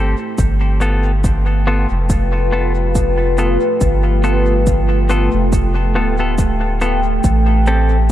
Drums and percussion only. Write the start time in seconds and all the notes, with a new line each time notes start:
0.38 kick, shaker
0.81 shaker
1.24 kick, shaker
2.10 kick, shaker
2.95 kick, shaker
3.38 shaker
3.81 kick, shaker
4.24 shaker
4.67 kick, shaker
5.09 shaker
5.53 kick, shaker
6.38 kick, shaker
6.81 shaker
7.24 kick, shaker
7.66 shaker